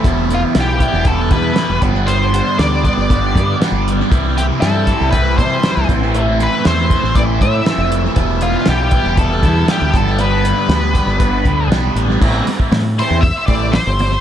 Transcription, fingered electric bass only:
\new Staff \with { instrumentName = "Fingered electric bass" } { \clef bass \time 4/4 \key a \minor \tempo 4 = 118 e,,4 b,,8. e,,8. e,8 r16 e,,16 g,,8~ | g,,4 d,8. g,,8. g,8 r16 g,,8. | c,4 g,8. c,8. c8 r16 c,16 a,,8~ | a,,4 e,8. a,,8. a,8 r16 f,,8. |
e,,4 b,,8. e,,8. e,8 r16 d,16 g,,8~ | g,,4 d,8. g,,8. d,8 b,,8 a,,8 | a,,8 r8 a,8. e,8 r16 a,,8. g,,8. | }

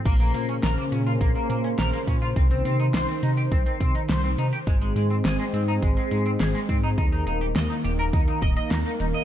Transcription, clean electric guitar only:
\new Staff \with { instrumentName = "Clean electric guitar" } { \time 4/4 \key bes \minor \tempo 4 = 104 bes16 bes16 bes16 des'16 bes'16 bes16 des'16 f'16 bes16 bes16 bes16 des'16 bes'16 bes16 des'16 f'16 | c'16 c'16 c'16 ees'16 c''16 c'16 ees'16 g'16 c'16 c'16 c'16 ees'16 c''16 c'16 ees'16 g'16 | aes16 aes16 aes16 c'16 aes'16 aes16 c'16 ees'16 aes16 aes16 aes16 c'16 aes'16 aes16 c'16 ees'16 | ees'16 ees'16 ees'16 g'16 ees''16 ees'16 g'16 bes'16 ees'16 ees'16 ees''16 ees''16 ees'16 ees'16 ees'16 ees''16 | }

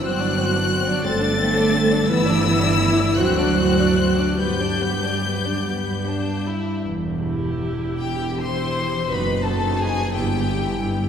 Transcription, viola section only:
\new Staff \with { instrumentName = "Viola section" } { \time 6/8 \key g \major \tempo 4. = 56 fis'4. a'4. | e'4. fis'4. | g'2~ g'8 r8 | \key e \minor r8 <e' g'>4. <e' g'>4 |
<dis' fis'>8 <dis' fis'>4 <b e'>8 <b e'>4 | }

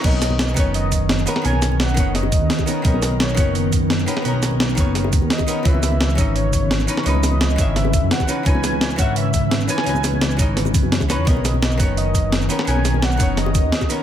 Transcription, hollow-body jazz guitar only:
\new Staff \with { instrumentName = "Hollow-body jazz guitar" } { \time 4/4 \key b \major \tempo 4 = 171 <dis b cis' ais'>4. <dis b cis' cis''>2 <dis b cis' ais'>8 | <dis b cis' ais'>4. <dis b cis' cis''>2 <dis b cis' ais'>8 | <dis b cis' ais'>4. <dis b cis' cis''>2 <dis b cis' ais'>8 | <dis b cis' ais'>4. <dis b cis' cis''>2 <dis b cis' ais'>8 |
<dis e cis' b'>4. <e cis' dis' dis''>2 <e cis' dis' b'>8 | <e cis' dis' b'>4. <dis e cis' e''>2 <e cis' dis' b'>8 | <e cis' dis' b'>4. <dis e cis' e''>2 <e cis' dis' b'>8 | <e cis' dis' b'>4. <e cis' dis' dis''>2 <e cis' dis' b'>8 |
<dis b cis' ais'>4. <dis b cis' cis''>2 <dis b cis' ais'>8 | <dis b cis' ais'>4. <dis b cis' cis''>2 <dis b cis' ais'>8 | }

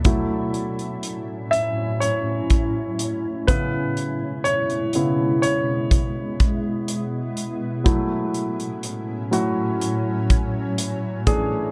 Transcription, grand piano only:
<<
  \new Staff \with { instrumentName = "Grand piano" } { \time 4/4 \key fis \minor \tempo 4 = 62 r4. e''8 cis''4 r8 b'8~ | b'8 cis''4 cis''2 r8 | r4. fis'2 gis'8 | }
  \new Staff \with { instrumentName = "Grand piano" } { \time 4/4 \key fis \minor <fis a e'>8 r2. <cis b e'>8 | r4 <cis b e'>8 r2 r8 | <fis a e'>4. <fis a e'>8 r4. <e a d'>8 | }
>>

